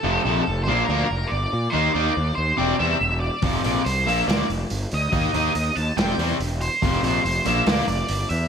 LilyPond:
<<
  \new Staff \with { instrumentName = "Lead electric guitar" } { \time 4/4 \key bes \lydian \tempo 4 = 142 a'8 a'8 a'8 c''8 bes'8 bes'8 d''4 | c''8 d''4 c''8 d''8 e''4 d''8~ | d''8 d''8 c''8 e''8 d''8 r4 ees''8~ | ees''8 ees''8 ees''8 a''8 g''8 r4 c''8~ |
c''8 c''8 c''8 e''8 d''8 d''4 e''8 | }
  \new Staff \with { instrumentName = "Distorted electric guitar" } { \clef bass \time 4/4 \key bes \lydian <f, c f>8 <f, c f>8 r8 <bes, f bes>8 <bes, f bes>8 r4. | <ees bes ees'>8 <ees bes ees'>8 r4 <c g c'>8 <c g c'>8 r4 | <f, c f>8 <f, c f>8 r8 <bes, f bes>8 <bes, f bes>8 r4. | <ees bes ees'>8 <ees bes ees'>8 r4 <c g c'>8 <c g c'>8 r4 |
<f, c f>8 <f, c f>8 r8 <bes, f bes>8 <bes, f bes>8 r4. | }
  \new Staff \with { instrumentName = "Distorted electric guitar" } { \clef bass \time 4/4 \key bes \lydian <f, c f>8 <f, c f>8 r8 <bes, f bes>8 <bes, f bes>8 r4. | <ees bes ees'>8 <ees bes ees'>8 r4 <c g c'>8 <c g c'>8 r4 | <f, c f>8 <f, c f>8 r8 <bes, f bes>8 <bes, f bes>8 r4. | <ees bes ees'>8 <ees bes ees'>8 r4 <c g c'>8 <c g c'>8 r4 |
<f, c f>8 <f, c f>8 r8 <bes, f bes>8 <bes, f bes>8 r4. | }
  \new Staff \with { instrumentName = "Picked electric bass" } { \clef bass \time 4/4 \key bes \lydian f,,8 bes,,8 f,,8 bes,,8 d,8 f,,8 g,,8 bes,8 | ees,8 ees,8 ees,8 ees,8 e,,8 e,8 e,,4 | f,,8 bes,,8 c,8 bes,,8 d,8 f,,8 g,,8 d,8 | ees,8 ees,8 ees,8 ees,8 e,,8 e,8 e,,4 |
f,,8 bes,,8 f,,8 bes,,8 d,8 f,,8 g,,8 e,8 | }
  \new DrumStaff \with { instrumentName = "Drums" } \drummode { \time 4/4 r4 r4 r4 r4 | r4 r4 r4 r4 | <hho bd>8 hho8 hho8 hho8 <hho sn>8 hho8 hho8 hho8 | <hho bd>8 hho8 hho8 hho8 <hho sn>8 hho8 hho8 hho8 |
<hho bd>8 hho8 hho8 hho8 <hho sn>8 hho8 hho8 hho8 | }
>>